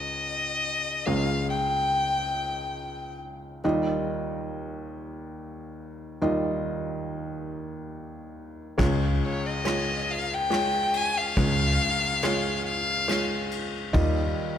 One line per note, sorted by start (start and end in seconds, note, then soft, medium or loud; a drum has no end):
0.00 1.02 C#2 soft
0.00 1.02 C#3 medium
0.00 1.02 G#3 medium
0.00 1.02 F4 soft
0.00 1.02 C#5 medium
0.00 1.07 D#5 medium
1.06 3.60 C#2 soft
1.06 3.60 C#3 soft
1.06 3.60 G#3 soft
1.06 3.60 F4 soft
1.06 3.60 C#5 medium
1.06 1.49 F5 medium
1.50 3.17 G5 medium
3.64 6.18 D#2 medium
3.64 6.18 D#3 medium
3.64 6.18 G3 medium
3.64 6.18 F4 soft
3.64 6.18 D#5 medium
6.22 8.75 D#2 medium
6.22 8.76 D#3 medium
6.22 8.75 G3 medium
6.22 8.76 F4 medium
6.22 8.76 D#5 medium
8.78 11.32 C#2 medium
8.78 9.19 C#2 medium
8.78 11.33 C#3 medium
8.78 9.42 G#3 medium
8.78 9.43 F4 medium
8.78 9.43 C#5 medium
8.78 kick medium
8.78 ride soft
9.26 9.48 C#5 medium
9.46 10.13 D#5 medium
9.65 10.29 G#3 medium
9.65 10.29 F4 soft
9.65 10.29 C#5 medium
9.65 cross-stick medium
9.65 ride soft
10.11 10.36 F5 medium
10.34 10.99 G5 medium
10.50 11.15 G#3 medium
10.50 11.15 F4 soft
10.50 11.15 C#5 medium
10.50 cross-stick medium
10.50 ride soft
10.94 11.19 G#5 medium
10.94 ride soft
11.18 12.66 F5 medium
11.37 11.77 C#2 medium
11.37 13.91 C#2 medium
11.37 13.91 C#3 soft
11.37 12.01 G#3 medium
11.37 12.01 F4 medium
11.37 12.01 C#5 medium
11.37 kick medium
11.37 ride soft
12.22 12.87 G#3 medium
12.22 12.87 F4 medium
12.22 12.87 C#5 medium
12.22 cross-stick medium
12.22 ride soft
12.67 13.48 F5 medium
13.08 13.72 G#3 medium
13.08 13.72 F4 medium
13.08 13.72 C#5 medium
13.08 cross-stick medium
13.08 ride soft
13.51 ride soft
13.93 14.58 D#2 medium
13.93 14.34 D#2 medium
13.93 14.58 D#3 medium
13.93 14.58 G3 medium
13.93 14.58 F4 medium
13.93 14.58 D#5 medium
13.93 kick medium
13.93 ride soft